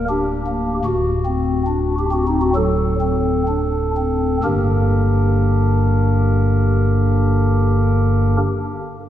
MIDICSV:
0, 0, Header, 1, 2, 480
1, 0, Start_track
1, 0, Key_signature, -2, "minor"
1, 0, Tempo, 1534527
1, 266, Tempo, 1690141
1, 746, Tempo, 1886792
1, 1228, Time_signature, 4, 2, 24, 8
1, 1706, Tempo, 1846154
1, 2428, End_track
2, 0, Start_track
2, 0, Title_t, "Pipe organ"
2, 0, Program_c, 0, 19
2, 0, Note_on_c, 0, 26, 67
2, 0, Note_on_c, 0, 38, 74
2, 27, Note_on_c, 0, 67, 88
2, 29, Note_on_c, 0, 62, 56
2, 133, Note_off_c, 0, 62, 0
2, 145, Note_on_c, 0, 58, 54
2, 231, Note_off_c, 0, 67, 0
2, 248, Note_off_c, 0, 58, 0
2, 255, Note_off_c, 0, 26, 0
2, 255, Note_off_c, 0, 38, 0
2, 264, Note_on_c, 0, 66, 86
2, 265, Note_on_c, 0, 38, 62
2, 266, Note_on_c, 0, 26, 67
2, 379, Note_on_c, 0, 60, 59
2, 486, Note_off_c, 0, 60, 0
2, 498, Note_on_c, 0, 62, 57
2, 578, Note_off_c, 0, 66, 0
2, 589, Note_on_c, 0, 67, 79
2, 607, Note_off_c, 0, 62, 0
2, 622, Note_off_c, 0, 67, 0
2, 623, Note_on_c, 0, 60, 48
2, 628, Note_on_c, 0, 66, 64
2, 661, Note_off_c, 0, 66, 0
2, 670, Note_on_c, 0, 63, 69
2, 702, Note_off_c, 0, 63, 0
2, 709, Note_on_c, 0, 66, 70
2, 734, Note_off_c, 0, 60, 0
2, 742, Note_off_c, 0, 66, 0
2, 749, Note_on_c, 0, 54, 53
2, 749, Note_on_c, 0, 69, 89
2, 852, Note_off_c, 0, 54, 0
2, 864, Note_on_c, 0, 60, 56
2, 972, Note_off_c, 0, 60, 0
2, 984, Note_on_c, 0, 62, 55
2, 1094, Note_off_c, 0, 62, 0
2, 1108, Note_on_c, 0, 60, 50
2, 1211, Note_off_c, 0, 60, 0
2, 1217, Note_off_c, 0, 38, 0
2, 1218, Note_off_c, 0, 26, 0
2, 1219, Note_off_c, 0, 69, 0
2, 1228, Note_on_c, 0, 43, 57
2, 1228, Note_on_c, 0, 50, 51
2, 1228, Note_on_c, 0, 62, 53
2, 1229, Note_on_c, 0, 31, 57
2, 1229, Note_on_c, 0, 58, 51
2, 1229, Note_on_c, 0, 67, 47
2, 1229, Note_on_c, 0, 70, 63
2, 2239, Note_off_c, 0, 43, 0
2, 2239, Note_off_c, 0, 50, 0
2, 2239, Note_off_c, 0, 62, 0
2, 2239, Note_off_c, 0, 67, 0
2, 2240, Note_off_c, 0, 31, 0
2, 2240, Note_off_c, 0, 58, 0
2, 2240, Note_off_c, 0, 70, 0
2, 2428, End_track
0, 0, End_of_file